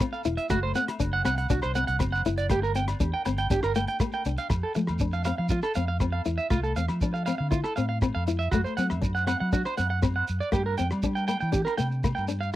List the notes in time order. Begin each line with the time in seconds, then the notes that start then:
0.00 C4, kick, cross-stick, closed hi-hat, low agogo, shekere
0.13 F5, shekere
0.25 E1 E4, closed hi-hat, shekere
0.37 E5, closed hi-hat, shekere
0.50 F#1 A3 F#4, kick, cross-stick, closed hi-hat, low agogo, shekere
0.63 C5
0.75 C4 F#5, closed hi-hat, shekere
0.88 cross-stick, closed hi-hat, low agogo
1.00 F#1 D4, kick, closed hi-hat, shekere
1.13 F#5
1.25 C2 C4 F#5, cross-stick, closed hi-hat, low agogo, shekere
1.38 F#5, closed hi-hat
1.50 C2 D4 F#4, kick, closed hi-hat, shekere
1.62 C2 C5, cross-stick, low agogo, shekere
1.75 C4 F#5, closed hi-hat, shekere
1.87 C2 F#5, closed hi-hat
1.99 F#1 C4, kick, cross-stick, closed hi-hat, low agogo, shekere
2.12 F#5, shekere
2.25 F#1 E4, closed hi-hat, shekere
2.38 D5, closed hi-hat, shekere
2.50 G1 A#3 G4, kick, cross-stick, closed hi-hat, low agogo, shekere
2.63 A#4, shekere
2.75 C4 G5, closed hi-hat, shekere
2.88 cross-stick, closed hi-hat, low agogo, shekere
3.00 E2 D4, kick, closed hi-hat, shekere
3.14 G5
3.25 G1 C4, muted clean electric guitar stroke, closed hi-hat, low agogo, shekere
3.38 G5, closed hi-hat, shekere
3.50 G1 D4 G4, kick, closed hi-hat, shekere
3.63 G1 A#4, cross-stick, low agogo, shekere
3.75 A#3 G5, closed hi-hat, shekere
3.88 G5, closed hi-hat
4.00 A#3, kick, cross-stick, closed hi-hat, low agogo, shekere
4.13 G5, shekere
4.25 C2 D4, closed hi-hat, shekere
4.38 F5, closed hi-hat, shekere
4.50 F2, muted nylon-string guitar stroke, muted clean electric guitar stroke, kick, cross-stick, low agogo, shekere
4.63 A4
4.75 F3 A3, muted clean electric guitar stroke, closed hi-hat, shekere
4.87 F2, cross-stick, low agogo, shekere
4.99 D4, kick, shekere
5.13 F5, shekere
5.24 C4 F5, cross-stick, closed hi-hat, low agogo, shekere
5.38 F3 F5
5.49 F4, muted nylon-string guitar stroke, kick, shekere
5.62 A4, cross-stick, low agogo, shekere
5.75 F2 C4 F5, closed hi-hat, shekere
5.88 F5
6.00 C4, kick, cross-stick, low agogo, shekere
6.12 F5
6.25 E2 E4, closed hi-hat, shekere
6.38 E5, shekere
6.50 C2 A3 F4, kick, cross-stick, low agogo, shekere
6.63 A4, shekere
6.76 E2 C4 F5, closed hi-hat, shekere
6.88 F3, cross-stick, low agogo, shekere
7.01 D4, kick, shekere
7.14 F5, shekere
7.26 C4 F5, closed hi-hat, low agogo, shekere
7.38 D3 F5
7.51 E4 F4, kick, shekere
7.64 A4, cross-stick, low agogo, shekere
7.76 A2 C4 F5, closed hi-hat, shekere
7.89 F5
8.02 C4, kick, cross-stick, low agogo, shekere
8.15 F2 F5
8.27 E4, closed hi-hat, shekere
8.39 E5, shekere
8.51 F#2 A3 F#4, kick, cross-stick, low agogo, shekere
8.64 C5, shekere
8.77 F#3 C4 F#5, closed hi-hat, shekere
8.90 F#2, cross-stick, low agogo, shekere
9.02 D4, kick, shekere
9.15 F#5, shekere
9.27 C4 F#5, cross-stick, closed hi-hat, low agogo, shekere
9.40 F#3 F#5
9.53 D4 F#4, kick, shekere
9.65 C5, cross-stick, low agogo, shekere
9.77 F#2 C4 F#5, closed hi-hat, shekere
9.90 F#5
10.02 C4, kick, cross-stick, low agogo, shekere
10.16 F#5
10.27 F#2, closed hi-hat, shekere
10.40 D5, shekere
10.52 G2 A#3 G4, kick, cross-stick, low agogo, shekere
10.66 A#4
10.77 F2 C4 G5, closed hi-hat, shekere
10.91 G3, cross-stick, low agogo, shekere
11.03 D4, kick, shekere
11.15 G5, shekere
11.28 A#3 G5, closed hi-hat, low agogo, shekere
11.40 E3 G5, shekere
11.52 D4 G4, kick, shekere
11.65 A#4, cross-stick, low agogo, shekere
11.77 C3 A#3 G5, closed hi-hat, shekere
11.91 shekere
12.04 A#3, kick, cross-stick, low agogo, shekere
12.15 G2 G5, shekere
12.28 D4, closed hi-hat, shekere
12.41 F5, shekere